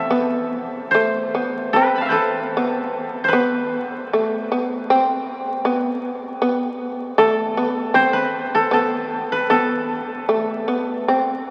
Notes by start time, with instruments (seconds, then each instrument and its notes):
Already playing: koto A3 B3 C4 E4 A4 E5
0.10 shamisen B3
0.91 shamisen A3, koto C5
1.35 shamisen B3
1.73 shamisen C4, koto B4
1.96 koto A5 B5
2.01 koto F5
2.05 koto C5 E5
2.10 koto A4 B4
2.57 shamisen B3
3.24 koto C5
3.28 koto B4
3.33 shamisen B3
4.13 shamisen A3
4.52 shamisen B3
4.90 shamisen C4
5.65 shamisen B3
6.42 shamisen B3
7.18 shamisen A3, koto A4
7.57 shamisen B3
7.94 shamisen C4, koto C5
8.13 koto B4
8.55 koto A4
8.71 shamisen B3, koto A4
9.32 koto B4
9.50 shamisen B3, koto A4
10.29 shamisen A3
10.68 shamisen B3
11.08 shamisen C4